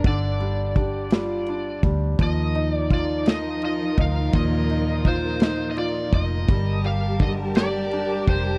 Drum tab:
RD |xxxxxx|xxxxxx|xxxxxx|xxxxxx|
SD |---o--|---o--|---o--|---o--|
BD |o-o--o|o-o--o|o-o--o|o-o--o|